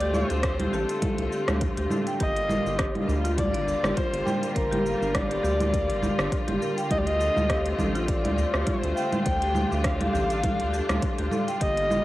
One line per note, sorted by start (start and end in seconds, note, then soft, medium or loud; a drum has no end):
0.00 0.24 D2 loud
0.00 11.58 D3 medium
0.00 2.17 A3 medium
0.00 2.16 C4 medium
0.00 2.16 F4 medium
0.00 0.29 G4 loud
0.00 0.17 D5 loud
0.00 closed hi-hat soft
0.14 0.76 C5 loud
0.14 low conga medium
0.14 cabasa medium
0.30 0.68 D2 medium
0.30 0.59 D4 medium
0.30 closed hi-hat soft
0.30 cabasa soft
0.43 kick loud
0.43 cross-stick medium
0.43 closed hi-hat medium
0.43 cabasa soft
0.60 0.68 G4 medium
0.60 closed hi-hat soft
0.60 low conga medium
0.73 0.85 A1 medium
0.73 1.01 G4 loud
0.73 1.91 A4 medium
0.73 cabasa medium
0.89 closed hi-hat soft
0.89 cabasa soft
1.02 1.18 A4 medium
1.02 kick loud
1.02 closed hi-hat medium
1.02 low conga medium
1.02 cabasa soft
1.18 1.29 C2 loud
1.18 closed hi-hat soft
1.32 1.47 G4 medium
1.32 cabasa medium
1.48 1.69 D2 medium
1.48 1.76 D4 medium
1.48 cross-stick medium
1.48 closed hi-hat soft
1.48 low conga medium
1.48 cabasa soft
1.61 kick loud
1.61 closed hi-hat medium
1.61 cabasa soft
1.77 1.87 D2 medium
1.77 1.85 G4 medium
1.77 closed hi-hat soft
1.90 2.06 A4 medium
1.90 low conga medium
1.90 cabasa medium
2.07 2.19 G5 medium
2.07 closed hi-hat soft
2.07 cabasa soft
2.20 2.59 G1 medium
2.20 6.87 G3 medium
2.20 6.87 A#3 medium
2.20 12.04 F4 medium
2.20 2.48 G4 medium
2.20 3.05 D#5 loud
2.20 kick loud
2.20 closed hi-hat medium
2.20 cabasa soft
2.36 closed hi-hat soft
2.49 2.65 A#4 medium
2.49 low conga medium
2.49 cabasa medium
2.66 3.03 G1 medium
2.66 cabasa soft
2.79 3.07 G4 medium
2.79 kick loud
2.79 cross-stick medium
2.79 closed hi-hat medium
2.79 cabasa soft
2.95 closed hi-hat soft
2.95 low conga medium
3.08 3.55 D2 loud
3.08 3.23 D4 medium
3.08 udu loud
3.08 cabasa medium
3.24 3.37 F4 medium
3.24 closed hi-hat soft
3.24 cabasa soft
3.38 3.98 D5 loud
3.38 kick loud
3.38 closed hi-hat medium
3.38 low conga medium
3.38 cabasa soft
3.54 3.75 G1 medium
3.54 3.82 D5 loud
3.54 closed hi-hat soft
3.67 udu medium
3.67 cabasa medium
3.83 3.93 G1 loud
3.83 3.91 G4 medium
3.83 cross-stick medium
3.83 low conga medium
3.83 cabasa soft
3.96 4.12 F4 medium
3.96 4.55 C5 loud
3.96 kick loud
3.96 closed hi-hat medium
3.96 cabasa soft
4.12 4.22 G1 loud
4.12 closed hi-hat soft
4.25 4.41 G5 loud
4.25 low conga medium
4.25 cabasa medium
4.43 closed hi-hat soft
4.43 cabasa soft
4.55 4.95 G1 medium
4.55 5.16 A#4 loud
4.55 4.71 C5 loud
4.55 kick loud
4.55 closed hi-hat medium
4.55 cabasa soft
4.71 4.99 G4 loud
4.71 closed hi-hat soft
4.71 low conga medium
4.86 cabasa medium
5.01 5.38 G1 loud
5.01 5.29 D4 medium
5.01 cabasa soft
5.15 6.62 D5 loud
5.15 kick loud
5.15 cross-stick medium
5.15 closed hi-hat medium
5.15 low conga medium
5.15 cabasa soft
5.30 5.38 G4 medium
5.30 closed hi-hat soft
5.43 5.91 D2 loud
5.43 5.72 G4 loud
5.43 udu loud
5.43 cabasa medium
5.60 closed hi-hat soft
5.60 low conga medium
5.60 cabasa soft
5.72 5.88 A#4 medium
5.72 kick loud
5.72 closed hi-hat medium
5.72 cabasa soft
5.89 6.10 G1 medium
5.89 closed hi-hat soft
6.02 6.18 G4 medium
6.02 udu medium
6.02 low conga medium
6.02 cabasa medium
6.18 6.29 G1 loud
6.18 6.46 D4 medium
6.18 cross-stick medium
6.18 cabasa soft
6.32 kick loud
6.32 closed hi-hat medium
6.32 cabasa soft
6.48 6.58 G1 loud
6.48 6.55 G4 medium
6.48 closed hi-hat soft
6.48 low conga medium
6.61 6.76 A#4 medium
6.61 cabasa medium
6.77 6.90 G5 loud
6.77 closed hi-hat soft
6.77 cabasa soft
6.91 7.30 D2 loud
6.91 11.58 A3 medium
6.91 9.24 C4 medium
6.91 7.19 G4 medium
6.91 7.00 D#5 loud
6.91 kick loud
6.91 closed hi-hat medium
6.91 low conga medium
6.91 cabasa soft
6.98 7.08 D5 medium
7.07 7.79 D#5 loud
7.07 closed hi-hat soft
7.20 7.36 A4 medium
7.20 cabasa medium
7.37 7.74 D2 medium
7.37 low conga medium
7.37 cabasa soft
7.49 7.78 G4 loud
7.49 kick loud
7.49 cross-stick medium
7.49 closed hi-hat medium
7.49 cabasa soft
7.66 closed hi-hat soft
7.79 8.26 A1 loud
7.79 7.94 D4 medium
7.79 low conga medium
7.79 udu loud
7.79 cabasa medium
7.95 8.08 F4 medium
7.95 closed hi-hat soft
7.95 cabasa soft
8.08 8.63 D5 medium
8.08 kick loud
8.08 closed hi-hat medium
8.08 cabasa soft
8.24 8.46 D2 medium
8.24 8.52 D5 loud
8.24 closed hi-hat soft
8.24 low conga medium
8.38 udu medium
8.38 cabasa medium
8.54 8.64 D2 loud
8.54 8.61 G4 medium
8.54 cross-stick medium
8.54 cabasa soft
8.67 8.83 F4 medium
8.67 9.22 C5 medium
8.67 kick loud
8.67 closed hi-hat medium
8.67 low conga medium
8.67 cabasa soft
8.84 8.93 D2 loud
8.84 closed hi-hat soft
8.96 9.12 G5 loud
8.96 cabasa medium
9.12 closed hi-hat soft
9.12 low conga medium
9.12 cabasa soft
9.25 9.65 D2 medium
9.25 11.59 D4 medium
9.25 9.41 C5 loud
9.25 9.81 G5 loud
9.25 kick loud
9.25 closed hi-hat medium
9.25 cabasa soft
9.42 9.70 G4 loud
9.42 closed hi-hat soft
9.55 low conga medium
9.55 cabasa medium
9.71 10.09 D2 medium
9.71 9.99 D4 medium
9.71 cabasa soft
9.84 11.28 F5 loud
9.84 kick loud
9.84 cross-stick medium
9.84 closed hi-hat medium
9.84 cabasa soft
10.01 10.08 G4 medium
10.01 closed hi-hat soft
10.01 low conga medium
10.13 10.62 A1 medium
10.13 10.42 G4 loud
10.13 udu loud
10.13 cabasa medium
10.30 closed hi-hat soft
10.30 cabasa soft
10.43 10.59 A4 medium
10.43 kick loud
10.43 closed hi-hat medium
10.43 low conga medium
10.43 cabasa soft
10.60 10.81 D2 medium
10.60 closed hi-hat soft
10.72 10.88 G4 medium
10.72 udu medium
10.72 cabasa medium
10.89 10.99 D2 loud
10.89 11.17 D4 medium
10.89 cross-stick medium
10.89 closed hi-hat soft
10.89 low conga medium
10.89 cabasa soft
11.02 kick loud
11.02 closed hi-hat medium
11.02 cabasa soft
11.18 11.29 D2 loud
11.18 11.26 G4 medium
11.18 closed hi-hat soft
11.31 11.46 A4 medium
11.31 low conga medium
11.31 cabasa medium
11.48 11.61 G5 medium
11.48 closed hi-hat soft
11.48 cabasa soft
11.61 12.00 G1 loud
11.61 12.04 D3 medium
11.61 12.04 G3 medium
11.61 12.04 A#3 medium
11.61 11.89 G4 medium
11.61 12.04 D#5 loud
11.61 kick loud
11.61 closed hi-hat medium
11.61 cabasa soft
11.77 closed hi-hat soft
11.90 12.04 A#4 medium
11.90 low conga medium
11.90 cabasa medium